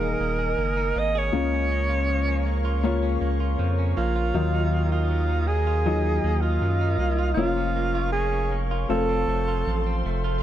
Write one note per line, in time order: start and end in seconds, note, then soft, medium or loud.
0.00 0.15 D#1 medium
0.00 1.35 D#3 medium
0.00 1.41 D#3 medium
0.00 0.21 A#3 medium
0.00 1.33 A#3 medium
0.00 1.36 D#4 medium
0.00 0.76 D#4 medium
0.00 0.38 G#4 medium
0.00 1.35 G#4 medium
0.00 1.00 A#4 medium
0.00 7.34 A#4 medium
0.00 1.31 D#5 medium
0.00 1.31 G#5 medium
0.00 1.31 D#6 medium
0.20 0.55 D#1 loud
0.20 0.58 A#3 medium
0.39 1.14 G#4 medium
0.58 0.93 F#1 medium
0.58 0.95 A#3 medium
0.77 1.41 D#4 medium
0.96 1.31 G#1 medium
0.96 1.71 A#3 medium
0.96 1.20 D#5 loud
1.15 1.41 G#4 medium
1.15 2.67 C#5 medium
1.32 3.18 C#2 medium
1.32 2.42 C#3 medium
1.32 2.82 C#3 medium
1.32 2.76 A#3 medium
1.32 2.76 C#4 medium
1.32 2.77 F4 medium
1.32 4.32 C#5 medium
1.32 4.32 F5 medium
1.32 4.31 C#6 medium
1.54 2.27 C#4 medium
1.72 2.46 A#3 medium
1.89 2.64 F4 medium
2.09 3.59 F3 medium
2.28 3.02 C#4 medium
2.46 3.21 A#3 medium
2.65 3.40 F4 medium
2.83 4.34 C#3 medium
2.83 4.27 A#3 medium
2.83 4.27 C#4 medium
2.83 4.28 F4 medium
3.03 3.77 C#4 medium
3.21 3.56 C#2 medium
3.21 3.97 A#3 medium
3.40 4.16 F4 medium
3.59 3.94 F2 medium
3.59 4.57 F3 medium
3.79 4.43 C#4 medium
3.97 4.32 A#1 medium
3.97 4.72 A#3 medium
3.97 4.88 F4 medium
4.16 4.57 F4 medium
4.34 6.20 D#2 medium
4.34 5.85 D#3 medium
4.34 5.44 D#3 medium
4.34 5.78 F#3 medium
4.34 5.79 D#4 medium
4.34 5.79 F4 medium
4.34 7.35 D#5 medium
4.34 10.41 F5 medium
4.34 7.35 D#6 medium
4.54 5.28 D#4 medium
4.73 5.47 A#3 medium
4.92 5.49 F4 medium
4.92 5.67 F4 medium
5.11 6.61 F#3 medium
5.29 6.04 D#4 soft
5.47 6.23 A#3 medium
5.47 6.43 G#4 medium
5.67 6.43 F4 medium
5.86 7.45 D#3 medium
5.86 7.30 F#3 medium
5.86 7.30 D#4 medium
5.86 7.30 F4 medium
6.05 6.80 D#4 medium
6.24 6.59 D#2 loud
6.24 6.99 A#3 medium
6.41 7.33 F4 medium
6.41 7.18 F4 medium
6.61 6.97 F#2 medium
6.61 7.37 F#3 medium
6.81 7.45 D#4 medium
6.98 7.34 C2 medium
6.98 7.45 A#3 medium
7.18 7.95 F4 medium
7.34 8.86 F1 loud
7.34 9.67 F3 medium
7.34 8.82 A#3 medium
7.34 8.82 C#4 medium
7.34 8.08 F4 medium
7.34 8.88 A#4 medium
7.34 8.89 C#5 medium
7.38 8.83 F4 medium
7.38 8.89 C#6 medium
7.57 8.32 C#4 medium
7.76 8.12 A#3 medium
7.95 8.71 F4 medium
8.12 8.50 A#3 medium
8.12 8.58 G#4 loud
8.33 8.98 C#4 medium
8.51 8.98 A#3 medium
8.71 9.48 F4 medium
8.88 9.26 F1 medium
8.88 10.43 F2 medium
8.88 10.36 A3 medium
8.88 10.36 C4 medium
8.88 10.37 F4 medium
8.88 10.42 A4 medium
8.88 10.02 A4 loud
8.88 10.42 C5 medium
8.88 10.42 C6 medium
9.09 9.85 C4 medium
9.27 9.64 F1 medium
9.27 10.05 A3 medium
9.48 10.24 F4 medium
9.67 10.03 A1 medium
9.67 10.43 F3 medium
9.87 10.43 C4 medium
10.06 10.41 F1 medium
10.06 10.43 A3 medium
10.24 10.43 F4 medium